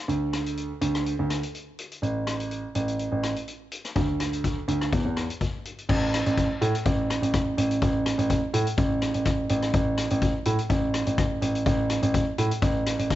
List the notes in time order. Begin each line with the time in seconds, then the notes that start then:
0.08 D2, closed hi-hat
0.33 cross-stick, closed hi-hat
0.46 closed hi-hat
0.57 closed hi-hat
0.81 D2, closed hi-hat
0.95 cross-stick, closed hi-hat
1.06 closed hi-hat
1.19 D2
1.30 cross-stick, closed hi-hat
1.43 closed hi-hat
1.55 closed hi-hat
1.79 closed hi-hat
1.92 closed hi-hat
2.02 A1, closed hi-hat
2.27 cross-stick, closed hi-hat
2.40 closed hi-hat
2.51 closed hi-hat
2.75 A1, closed hi-hat
2.88 closed hi-hat
2.99 closed hi-hat
3.12 A1
3.23 cross-stick, closed hi-hat
3.36 closed hi-hat
3.48 closed hi-hat
3.72 closed hi-hat
3.85 cross-stick, closed hi-hat
3.96 D2, kick, closed hi-hat
4.20 cross-stick, closed hi-hat
4.33 closed hi-hat
4.44 kick, closed hi-hat
4.68 D2, closed hi-hat
4.81 cross-stick, closed hi-hat
4.92 E2, kick, closed hi-hat
5.05 E2
5.17 cross-stick, closed hi-hat
5.30 closed hi-hat
5.41 kick, closed hi-hat
5.65 closed hi-hat
5.78 closed hi-hat
5.89 A1, kick, crash
6.14 cross-stick, closed hi-hat
6.26 A1, closed hi-hat
6.37 kick, closed hi-hat
6.61 A2, closed hi-hat
6.75 closed hi-hat
6.85 A1, kick, closed hi-hat
7.10 cross-stick, closed hi-hat
7.22 A1, closed hi-hat
7.34 kick, cross-stick, closed hi-hat
7.58 A1, closed hi-hat
7.71 closed hi-hat
7.82 A1, kick, closed hi-hat
8.06 cross-stick, closed hi-hat
8.18 A1, closed hi-hat
8.30 kick, closed hi-hat
8.54 A2, closed hi-hat
8.67 closed hi-hat
8.78 A1, kick, closed hi-hat
9.02 cross-stick, closed hi-hat
9.14 A1, closed hi-hat
9.25 kick, cross-stick, closed hi-hat
9.49 A1, closed hi-hat
9.62 cross-stick, closed hi-hat
9.74 A1, kick, closed hi-hat
9.98 cross-stick, closed hi-hat
10.10 A1, closed hi-hat
10.22 kick, closed hi-hat
10.45 A2, closed hi-hat
10.59 closed hi-hat
10.70 A1, kick, closed hi-hat
10.94 cross-stick, closed hi-hat
11.07 A1, closed hi-hat
11.18 kick, cross-stick, closed hi-hat
11.42 A1, closed hi-hat
11.55 closed hi-hat
11.66 A1, kick, closed hi-hat
11.90 cross-stick, closed hi-hat
12.02 A1, closed hi-hat
12.14 kick, closed hi-hat
12.38 A2, closed hi-hat
12.51 closed hi-hat
12.62 A1, kick, closed hi-hat
12.86 cross-stick, closed hi-hat
12.99 A1, closed hi-hat
13.10 kick, cross-stick, closed hi-hat